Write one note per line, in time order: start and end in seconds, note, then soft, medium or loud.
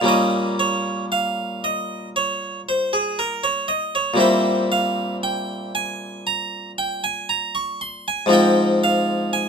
0.01 4.13 A#2 soft
0.01 4.13 G3 soft
0.01 4.14 A#3 soft
0.01 4.15 C#4 soft
0.08 0.52 D#5 medium
0.59 1.04 C#5 medium
1.12 1.63 F5 medium
1.64 2.07 D#5 medium
2.16 2.59 C#5 medium
2.69 2.93 C5 medium
2.93 3.18 G#4 medium
3.19 3.44 A#4 medium
3.44 3.69 C#5 medium
3.68 3.94 D#5 medium
3.95 4.20 C#5 medium
4.14 8.24 A#2 medium
4.14 8.25 G3 soft
4.14 8.25 C4 soft
4.14 8.26 E4 soft
4.20 4.63 C5 medium
4.72 5.15 F5 medium
5.23 5.74 G5 medium
5.75 6.26 G#5 medium
6.27 6.70 A#5 medium
6.78 7.03 G5 medium
7.04 7.29 G#5 medium
7.29 7.54 A#5 medium
7.55 7.80 C#6 medium
7.81 8.06 C6 medium
8.08 8.32 G#5 medium
8.26 9.49 G#2 medium
8.26 9.49 F3 soft
8.26 9.49 C4 soft
8.30 9.49 F4 soft
8.30 8.82 G5 medium
8.84 9.33 F5 medium
9.33 9.49 G#5 medium